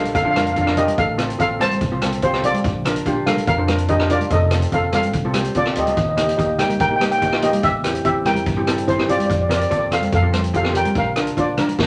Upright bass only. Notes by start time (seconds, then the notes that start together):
Already playing: A#1
0.15 F2
0.98 A1
1.40 A1
1.81 C2
2.65 A#1
3.06 A#1
3.47 F2
4.31 F1
4.72 F1
5.14 C2
5.55 C2
5.77 D2
5.97 D#2
6.39 D#2
6.80 A#1
7.64 E2
8.05 E2
8.47 G2
9.30 F2
9.71 F2
10.13 F2
10.96 A#1
11.37 A#1
11.79 F2